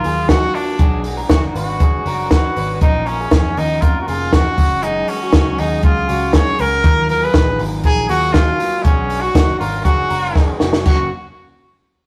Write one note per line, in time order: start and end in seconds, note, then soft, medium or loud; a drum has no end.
0.00 0.30 F4 medium
0.00 0.29 F4 medium
0.04 0.47 D#2 medium
0.04 0.28 F#3 soft
0.04 0.28 A#3 soft
0.04 0.30 G#4 medium
0.04 open hi-hat medium
0.28 0.54 D#3 soft
0.28 0.54 F#3 medium
0.28 0.55 A#3 medium
0.28 0.53 F4 medium
0.28 0.57 F#4 loud
0.28 0.77 F#4 medium
0.28 kick loud
0.28 snare loud
0.28 closed hi-hat medium
0.54 0.78 F#3 soft
0.54 0.79 A#3 soft
0.54 1.04 D4 medium
0.54 0.80 F4 medium
0.54 open hi-hat medium
0.79 1.22 B1 medium
0.79 1.05 B2 medium
0.79 1.05 F#3 medium
0.79 1.05 B3 medium
0.79 1.05 D4 medium
0.79 1.04 F#4 medium
0.79 1.15 G#4 medium
0.79 1.03 C#5 medium
0.79 kick loud
0.79 closed hi-hat medium
1.04 1.28 B3 soft
1.04 1.29 D4 soft
1.04 1.29 F#4 soft
1.04 1.30 C#5 soft
1.04 open hi-hat medium
1.17 1.53 A#4 medium
1.29 1.52 F#1 medium
1.29 2.05 B3 medium
1.29 2.06 D4 medium
1.29 1.41 F#4 medium
1.29 2.05 F#4 medium
1.29 2.05 C#5 medium
1.29 kick loud
1.29 snare loud
1.29 closed hi-hat medium
1.54 1.80 G#1 medium
1.54 2.27 F#4 medium
1.54 1.81 B4 medium
1.54 open hi-hat medium
1.80 2.02 F#1 medium
1.80 2.06 G#4 medium
1.80 kick loud
1.80 closed hi-hat medium
2.06 2.49 F#1 medium
2.06 2.30 B3 soft
2.06 2.31 D4 soft
2.06 2.31 F#4 soft
2.06 2.32 A#4 medium
2.06 2.31 C#5 medium
2.06 open hi-hat medium
2.31 2.56 B3 medium
2.31 2.56 D4 soft
2.31 2.78 F#4 medium
2.31 2.55 F#4 medium
2.31 2.56 B4 medium
2.31 2.55 C#5 soft
2.31 kick loud
2.31 snare medium
2.31 closed hi-hat medium
2.56 2.78 G#1 medium
2.56 2.81 B3 soft
2.56 2.81 D4 soft
2.56 2.82 F#4 soft
2.56 2.82 B4 medium
2.56 2.82 C#5 medium
2.56 open hi-hat medium
2.81 3.25 A#1 medium
2.81 3.06 A#2 medium
2.81 3.06 F3 medium
2.81 3.07 A#3 medium
2.81 3.06 C#4 medium
2.81 3.08 D#4 medium
2.81 3.05 F4 medium
2.81 3.20 A#4 medium
2.81 kick loud
2.81 closed hi-hat medium
3.06 3.31 A#3 soft
3.06 3.60 C#4 medium
3.06 3.31 C#4 soft
3.06 3.32 F4 medium
3.06 open hi-hat medium
3.20 3.55 G#4 medium
3.31 3.53 F2 loud
3.31 4.07 F3 medium
3.31 4.07 A#3 medium
3.31 4.07 C#4 medium
3.31 4.05 F4 medium
3.31 kick loud
3.31 snare loud
3.31 closed hi-hat medium
3.57 3.82 D#2 medium
3.57 3.83 D#4 medium
3.57 3.82 A#4 medium
3.57 open hi-hat medium
3.81 4.04 F2 medium
3.81 4.01 F4 medium
3.81 4.08 A#4 medium
3.81 kick loud
3.81 closed hi-hat medium
4.01 4.09 F#4 medium
4.07 4.51 F1 medium
4.07 4.31 A#3 soft
4.07 4.31 C#4 soft
4.07 4.32 F4 soft
4.07 4.35 F4 medium
4.07 4.33 G#4 medium
4.07 open hi-hat medium
4.31 4.57 F3 medium
4.31 4.58 A#3 medium
4.31 4.57 C#4 medium
4.31 4.56 F4 medium
4.31 4.85 F#4 loud
4.31 4.81 F#4 medium
4.31 kick loud
4.31 snare medium
4.31 closed hi-hat medium
4.57 5.01 F#1 loud
4.57 4.81 G#3 soft
4.57 4.82 C#4 soft
4.57 4.82 F#4 medium
4.57 kick medium
4.57 open hi-hat medium
4.82 5.08 F#3 medium
4.82 5.08 G#3 medium
4.82 5.08 C#4 medium
4.82 5.10 D#4 medium
4.82 5.06 F#4 medium
4.82 5.19 G#4 medium
4.82 closed hi-hat medium
5.08 5.32 G#3 soft
5.08 5.33 C#4 soft
5.08 5.61 C#4 medium
5.08 5.33 F#4 soft
5.08 open hi-hat medium
5.22 5.57 F#4 medium
5.32 5.55 C#2 medium
5.32 6.13 F#3 medium
5.32 6.09 G#3 medium
5.32 6.08 C#4 medium
5.32 6.07 F#4 medium
5.32 kick loud
5.32 snare loud
5.32 closed hi-hat medium
5.58 5.80 D#2 medium
5.58 5.84 D#4 medium
5.58 5.83 G#4 medium
5.58 open hi-hat medium
5.83 6.05 C#2 medium
5.83 6.37 F4 medium
5.83 6.09 G#4 medium
5.83 kick loud
5.83 closed hi-hat medium
6.08 6.52 C#2 medium
6.08 6.33 G#3 soft
6.08 6.33 C#4 soft
6.08 6.34 F#4 medium
6.08 open hi-hat medium
6.33 6.59 F#3 medium
6.33 6.59 G#3 soft
6.33 6.59 C#4 medium
6.33 6.58 F#4 medium
6.33 6.60 G#4 medium
6.33 6.62 C#5 loud
6.33 kick loud
6.33 snare loud
6.33 closed hi-hat medium
6.59 6.81 C#2 medium
6.59 6.84 G#3 soft
6.59 6.84 C#4 medium
6.59 6.84 F#4 medium
6.59 6.84 A#4 medium
6.59 7.10 A#4 loud
6.59 open hi-hat medium
6.83 7.27 D#2 medium
6.83 7.09 D#3 medium
6.83 7.09 F#3 medium
6.83 7.08 A#3 medium
6.83 7.07 F4 medium
6.83 7.20 A#4 medium
6.83 kick loud
6.83 closed hi-hat medium
7.08 7.33 F#3 soft
7.08 7.33 A#3 soft
7.08 7.34 F4 medium
7.08 7.25 A#4 medium
7.08 open hi-hat medium
7.23 7.60 G#4 medium
7.23 7.61 B4 loud
7.33 7.56 A#1 medium
7.33 8.09 D#3 medium
7.33 8.10 F#3 medium
7.33 8.09 A#3 medium
7.33 8.08 F4 medium
7.33 kick loud
7.33 snare loud
7.33 closed hi-hat medium
7.59 7.81 G#1 loud
7.59 7.84 A#4 medium
7.59 open hi-hat medium
7.84 8.06 A#1 medium
7.84 8.08 G#4 loud
7.84 8.09 A#4 medium
7.84 kick medium
7.84 closed hi-hat medium
8.09 8.52 D#2 medium
8.09 8.32 F#3 soft
8.09 8.33 A#3 soft
8.09 8.34 F4 soft
8.09 8.34 F#4 loud
8.09 8.35 G#4 medium
8.09 open hi-hat medium
8.33 8.59 D#3 medium
8.33 8.59 F#3 medium
8.33 8.82 F#3 medium
8.33 8.59 A#3 medium
8.33 8.85 F4 loud
8.33 8.58 F4 medium
8.33 kick loud
8.33 snare medium
8.33 closed hi-hat medium
8.59 8.83 F#3 soft
8.59 8.84 A#3 soft
8.59 8.85 F4 medium
8.59 open hi-hat medium
8.83 9.28 B1 loud
8.83 9.09 B2 medium
8.83 9.10 F#3 medium
8.83 9.09 B3 medium
8.83 9.22 C#4 medium
8.83 9.08 D4 medium
8.83 9.08 F#4 medium
8.83 9.21 G#4 medium
8.83 9.07 C#5 medium
8.83 kick loud
8.83 closed hi-hat medium
9.08 9.33 B3 soft
9.08 9.34 D4 soft
9.08 9.35 F#4 soft
9.08 9.34 C#5 medium
9.08 open hi-hat medium
9.21 9.58 F#4 loud
9.21 9.58 F#4 medium
9.34 9.56 F#1 loud
9.34 10.10 B3 medium
9.34 10.10 D4 medium
9.34 10.10 F#4 medium
9.34 10.09 C#5 medium
9.34 kick loud
9.34 snare loud
9.34 closed hi-hat medium
9.59 9.82 G#1 medium
9.59 9.83 F4 medium
9.59 9.85 A#4 medium
9.59 open hi-hat medium
9.85 10.07 F#1 medium
9.85 10.56 F#4 medium
9.85 10.10 G#4 medium
9.85 kick medium
9.85 closed hi-hat medium
10.10 10.53 F#1 medium
10.10 10.32 B3 soft
10.10 10.34 D4 soft
10.10 10.34 F#4 soft
10.10 10.35 A#4 medium
10.10 10.34 C#5 soft
10.10 open hi-hat medium
10.33 10.60 B3 medium
10.33 10.59 D4 medium
10.33 10.59 F#4 medium
10.33 10.60 G#4 medium
10.33 10.58 C#5 medium
10.33 kick loud
10.33 snare medium
10.60 10.82 F1 medium
10.60 10.84 B3 soft
10.60 10.85 D4 soft
10.60 10.85 F#4 medium
10.60 10.86 F#4 medium
10.60 10.85 C#5 medium
10.60 snare medium
10.73 snare medium
10.83 11.09 F#1 medium
10.83 11.04 F#3 medium
10.83 11.05 A#3 medium
10.83 11.06 C#4 medium
10.83 11.06 F#4 medium
10.83 11.10 F#4 medium
10.83 kick loud
10.83 crash medium
10.87 11.10 F#4 medium